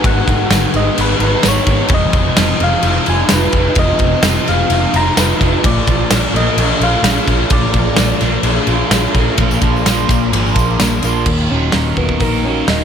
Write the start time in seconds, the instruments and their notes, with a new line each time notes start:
Already playing: clean electric guitar D#3 G#3, distorted electric guitar G#3 B3 D#4, overdriven electric guitar G#3 B3 D#4, string machine F#4 B4 G#5
0.03 fingered electric bass G#1, distorted electric guitar G#2, overdriven electric guitar G#2, soft synth lead F#5, kick, crash
0.27 fingered electric bass G#1, distorted electric guitar D#3, overdriven electric guitar D#3, kick, crash
0.50 fingered electric bass G#1, clean electric guitar D#3, distorted electric guitar D#3, overdriven electric guitar B3, snare, tambourine, crash
0.73 fingered electric bass G#1, distorted electric guitar G#3, overdriven electric guitar G#3, soft synth lead D#5, crash
0.96 fingered electric bass G#1, overdriven electric guitar B3, distorted electric guitar D#4, crash
1.01 soft synth lead B4
1.19 fingered electric bass G#1, distorted electric guitar B3, overdriven electric guitar D#4, crash
1.24 soft synth lead B4
1.43 fingered electric bass G#1, overdriven electric guitar B3, distorted electric guitar D#4, snare, tambourine, crash
1.48 soft synth lead C#5
1.66 fingered electric bass G#1, clean electric guitar D#3, overdriven electric guitar G#3, distorted electric guitar B3, kick, crash
1.88 fingered electric bass F1, overdriven electric guitar F2, distorted electric guitar F2, string machine F4 D#5 G#5, kick, crash
1.94 soft synth lead D#5
2.13 fingered electric bass F1, clean electric guitar C3, distorted electric guitar C3, overdriven electric guitar F3, kick, crash
2.37 fingered electric bass F1, clean electric guitar F3, distorted electric guitar F3, overdriven electric guitar D#4, snare, tambourine, crash
2.60 fingered electric bass F1, distorted electric guitar G#3, overdriven electric guitar G#3, soft synth lead F5, crash
2.83 fingered electric bass F1, overdriven electric guitar D#4, distorted electric guitar F4, crash
3.06 fingered electric bass F1, distorted electric guitar D#4, overdriven electric guitar F4, soft synth lead G#5, crash
3.29 fingered electric bass F1, overdriven electric guitar D#4, distorted electric guitar F4, snare, tambourine, crash
3.34 soft synth lead B4
3.52 fingered electric bass F1, clean electric guitar F3, overdriven electric guitar G#3, distorted electric guitar D#4, kick, crash
3.75 fingered electric bass F1, overdriven electric guitar F2, distorted electric guitar F2, soft synth lead D#5, kick, crash
3.99 fingered electric bass F1, clean electric guitar C3, distorted electric guitar C3, overdriven electric guitar F3, kick, crash
4.22 fingered electric bass F1, clean electric guitar F3, overdriven electric guitar D#4, snare, tambourine, crash
4.27 distorted electric guitar F3
4.46 fingered electric bass F1, overdriven electric guitar G#3, distorted electric guitar G#3, soft synth lead F5, snare, crash
4.70 fingered electric bass F1, overdriven electric guitar D#4, distorted electric guitar F4, crash
4.93 fingered electric bass F1, distorted electric guitar D#4, overdriven electric guitar F4, soft synth lead A#5, crash
5.17 fingered electric bass F1, overdriven electric guitar D#4, distorted electric guitar F4, soft synth lead B4, snare, tambourine, crash
5.40 fingered electric bass F1, clean electric guitar F3, overdriven electric guitar G#3, distorted electric guitar D#4, kick, crash
5.63 fingered electric bass A#1, overdriven electric guitar A#2, distorted electric guitar A#2, string machine G#4 F5 A#5, soft synth lead D5, kick, crash
5.87 fingered electric bass A#1, overdriven electric guitar F3, distorted electric guitar F3, kick, crash
6.10 fingered electric bass A#1, distorted electric guitar F3, clean electric guitar F3, overdriven electric guitar D4, snare, tambourine, crash
6.33 fingered electric bass A#1, overdriven electric guitar A#3, distorted electric guitar A#3, soft synth lead D#5, crash
6.56 fingered electric bass A#1, overdriven electric guitar D4, distorted electric guitar F4, crash
6.80 fingered electric bass A#1, distorted electric guitar D4, overdriven electric guitar F4, soft synth lead F5, crash
7.03 fingered electric bass A#1, overdriven electric guitar D4, distorted electric guitar F4, snare, tambourine, crash
7.25 fingered electric bass A#1, overdriven electric guitar A#3, distorted electric guitar D4, kick, crash
7.29 clean electric guitar F3
7.49 fingered electric bass A#1, distorted electric guitar A#2, overdriven electric guitar A#2, soft synth lead D5, kick, crash
7.73 fingered electric bass A#1, distorted electric guitar F3, overdriven electric guitar F3, kick, crash
7.96 fingered electric bass A#1, distorted electric guitar F3, clean electric guitar F3, overdriven electric guitar D4, snare, tambourine, crash
8.20 fingered electric bass A#1, distorted electric guitar A#3, overdriven electric guitar A#3, snare, crash
8.43 fingered electric bass A#1, overdriven electric guitar D4, distorted electric guitar F4, crash
8.67 fingered electric bass A#1, distorted electric guitar D4, overdriven electric guitar F4, crash
8.90 fingered electric bass A#1, overdriven electric guitar D4, distorted electric guitar F4, snare, tambourine, crash
9.14 fingered electric bass A#1, clean electric guitar F3, overdriven electric guitar A#3, distorted electric guitar D4, kick, crash
9.38 fingered electric bass A#1, distorted electric guitar A#2 F3 A#3, overdriven electric guitar A#2 F3 A#3 D4, string machine G#4 D5 A#5, kick, ride
9.43 overdriven electric guitar F4
9.51 tambourine
9.60 fingered electric bass A#1, distorted electric guitar F3 A#3, clean electric guitar F3, kick, ride, tambourine
9.76 tambourine
9.83 fingered electric bass A#1, distorted electric guitar A#2 F3 A#3, overdriven electric guitar F3, snare, ride
9.87 overdriven electric guitar A#3 D4 F4, tambourine
10.00 tambourine
10.07 fingered electric bass A#1, distorted electric guitar F3 A#3, overdriven electric guitar F4, kick, ride
10.11 overdriven electric guitar A#3 D4, tambourine
10.31 fingered electric bass G#1, distorted electric guitar A#2 F3 A#3, overdriven electric guitar A#2 F3, ride
10.35 overdriven electric guitar A#3 D4 F4
10.47 tambourine
10.56 fingered electric bass A#1, distorted electric guitar F3 A#3, clean electric guitar A#3, kick, ride, tambourine
10.70 tambourine
10.78 fingered electric bass A#1, distorted electric guitar A#2 F3 A#3, soft synth lead A#3, clean electric guitar D4, snare, ride, tambourine
11.00 fingered electric bass A#1, distorted electric guitar F3 A#3, ride, tambourine
11.05 soft synth lead A#3, overdriven electric guitar A#3 D4 F4
11.26 fingered electric bass D#1, distorted electric guitar D#2, overdriven electric guitar D#2, string machine F#3 D#5 C#6, soft synth lead A#3, kick, crash
11.49 fingered electric bass D#1, distorted electric guitar A#2, overdriven electric guitar F#3, soft synth lead C#4, clean electric guitar D#4
11.72 fingered electric bass D#1, distorted electric guitar D#3, clean electric guitar A#3, overdriven electric guitar D#4, snare, open hi-hat
11.96 fingered electric bass D#1, clean electric guitar F#3, distorted electric guitar A#3, overdriven electric guitar A#3, soft synth lead B3, kick
12.09 kick
12.20 fingered electric bass A#1, soft synth lead A#3, distorted electric guitar D#4, overdriven electric guitar D#4, kick, open hi-hat
12.44 clean electric guitar F#3, distorted electric guitar A#3, overdriven electric guitar A#3, soft synth lead C#4
12.68 fingered electric bass D#1, distorted electric guitar D#3, overdriven electric guitar D#3, clean electric guitar A#3, soft synth lead D#4, snare, open hi-hat